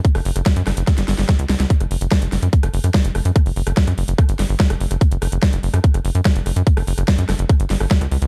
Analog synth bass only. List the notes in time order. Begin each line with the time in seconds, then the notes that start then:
0.15 F#1
0.25 F#1
0.36 F#1
0.56 F#2
0.67 F#1
0.77 F#1
0.98 G1
1.08 G1
1.18 G1
1.39 C#2
1.49 C#2
1.60 C#2
1.80 F#1
1.91 F#1
2.01 F#1
2.22 F#1
2.32 F#1
2.43 F#2
2.63 F#1
2.74 F#1
2.84 F#2
3.05 F#1
3.15 F#1
3.25 F#2
3.46 F#1
3.56 F#1
3.67 F#1
3.87 F#2
3.98 F#1
4.08 F#1
4.29 G1
4.39 G1
4.49 G1
4.70 F#1
4.80 F#1
4.91 F#1
5.12 F#1
5.22 F#1
5.32 F#1
5.53 F#1
5.63 F#1
5.74 F#2
5.94 F#1
6.05 F#1
6.15 F#2
6.36 F#1
6.46 F#1
6.56 F#2
6.77 F#1
6.87 F#1
6.98 F#1
7.18 F#2
7.29 F#1
7.39 F#1
7.60 G1
7.70 G1
7.80 G1
8.01 C#2
8.11 C#2
8.22 C#2